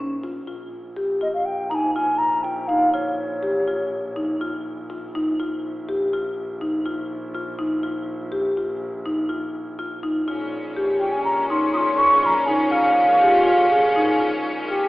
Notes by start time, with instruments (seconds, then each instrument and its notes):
Already playing: double bass A#1
0.00 marimba C#4
0.24 marimba F4
0.47 double bass A#1, marimba F4
0.96 marimba G4
1.21 marimba F4, flute D#5
1.34 flute F5
1.45 flute G5
1.70 marimba D#4, flute A#5
1.75 flute G#5
1.95 marimba F4, flute G#5
2.18 flute A#5
2.43 marimba F4, flute G5
2.68 marimba D#4, flute F5
2.93 marimba F4, flute C#5
3.43 marimba G4
3.68 marimba F4
4.16 marimba D#4
4.41 marimba F4
4.90 marimba F4
5.15 marimba D#4
5.39 double bass A#1, marimba F4
5.89 marimba G4
6.13 marimba F4
6.61 marimba D#4
6.86 marimba F4
7.35 marimba F4
7.59 marimba D#4
7.83 marimba F4
8.32 marimba G4
8.57 marimba F4
9.06 marimba D#4
9.29 marimba F4
9.79 marimba F4
10.03 marimba D#4
10.28 double bass A#1, string section A#2 G#3 C#4, french horn C#4, marimba F4
10.76 marimba G4
11.00 marimba F4, flute G5
11.12 flute G#5
11.24 flute A#5
11.50 marimba D#4, flute C6
11.73 marimba F4, flute C6 D#6
11.98 flute C#6
12.22 marimba F4, flute A#5 C6
12.46 marimba D#4, flute G#5
12.71 marimba F4, flute F5
13.21 french horn F4, marimba G4
13.46 marimba F4
13.72 french horn G#4
13.96 marimba D#4
14.20 marimba F4
14.68 marimba F4, french horn G4